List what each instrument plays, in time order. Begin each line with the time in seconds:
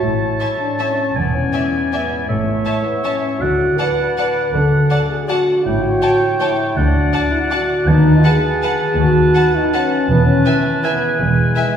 Already playing: harp A3 E4 C#5, clarinet C#5, oboe A5
0.04 double bass section A1, harp A2, cello section A2, french horn section E4
0.22 harp E4
0.40 harp A3, viola section C#5, violin section E5 A5
0.60 french horn section D4, harp E4
0.79 harp A3, french horn section C#4, viola section C#5, violin section E5 A5
1.16 double bass section E1, cello section E2, harp E2, french horn section B3, clarinet D5, oboe G#5
1.34 french horn section C#4, harp E4
1.53 harp G#3, viola section D5, violin section E5 G#5
1.73 harp E4
1.93 harp G#3, french horn section B3, viola section D5, violin section E5 G#5
2.11 harp D5
2.29 double bass section A1, harp A2, cello section A2, french horn section A3, clarinet C#5, oboe E5
2.47 harp E4
2.66 harp A3, viola section C#5, violin section E5 A5
2.85 french horn section B3, harp E4
3.04 harp A3, french horn section C#4, viola section C#5, violin section E5 A5
3.40 double bass section D2, harp D3, cello section D3, french horn section F#4, clarinet D5, oboe F#5
3.60 harp F#4
3.78 harp A3, french horn section B4, viola section D5, violin section F#5 A5
4.00 harp F#4
4.18 harp A3, viola section D5, violin section F#5 A5
4.36 harp D5
4.54 double bass section D2, harp D3, cello section D3, french horn section A4
4.72 harp F#4
4.90 harp A3, viola section D5, violin section F#5 A5
5.08 harp F#4, french horn section G#4
5.29 harp A3, french horn section F#4, viola section D5, violin section F#5 A5
5.47 harp D5
5.64 double bass section A1, harp A2, cello section A2, french horn section E4, clarinet C#5, oboe G5
5.82 french horn section F#4, harp G4
6.01 harp A3, viola section C#5, violin section G5 A5
6.20 harp G4
6.40 harp A3, french horn section E4, viola section C#5, violin section G5 A5
6.58 harp C#5
6.76 double bass section D2, cello section D2, harp D3, french horn section D4, clarinet D5, oboe F#5
6.94 harp F#4
7.13 harp A3, viola section D5, violin section F#5 A5
7.32 french horn section E4, harp F#4
7.51 harp A3, french horn section F#4, viola section D5, violin section F#5 A5
7.69 harp D5
7.86 double bass section D#2, cello section D#2, harp D#3, french horn section D#4, clarinet B4, oboe A5
8.04 harp F#4
8.24 harp A3, french horn section G#4, viola section B4, violin section F#5 A5
8.44 harp F#4
8.63 harp A3, viola section B4, violin section F#5 A5
8.81 harp B4
8.98 cello section D#2, double bass section D#2, harp D#3, french horn section F#4
9.16 harp F#4
9.35 harp A3, viola section B4, violin section F#5 A5
9.55 french horn section D#4, harp F#4
9.73 harp A3, french horn section C#4, viola section B4, violin section F#5 A5
9.92 harp B4
10.09 double bass section E1, cello section E2, harp E3, french horn section B3, clarinet B4
10.26 french horn section C#4
10.46 harp E4, viola section B4, violin section E5 G#5
10.65 harp B4
10.84 french horn section B3, harp E4, viola section B4, violin section E5 G#5, oboe G#5
11.03 harp G#4
11.20 double bass section E1, cello section E2, harp E3, french horn section G#3
11.38 harp B4
11.56 harp E4, viola section B4, violin section E5 G#5